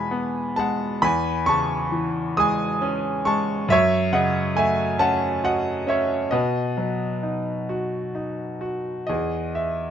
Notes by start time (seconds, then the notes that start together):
Already playing: E2 B2 E3 G#3 E5 F#5 G#5 A5 B5
0.11 B3
0.56 G#3 F#5 A5
1.02 E2 G#5 B5
1.46 C#3 A5 C#6
1.92 E3
2.37 G#3 G#5 D#6
2.82 C#4
3.25 G#3 A5 C#6
3.68 F#2 C#5 E5
4.13 C#3 D#5 F#5
4.55 A3 E5 G#5
4.99 C#4 F#5 A5
5.44 F#4 D#5 F#5
5.87 C#4 C#5 E5
6.31 B2 B4 D#5
6.77 F#3
7.23 D#4
7.69 F#4
8.15 D#4
8.61 F#4
9.07 E2 G#4 D#5
9.55 E5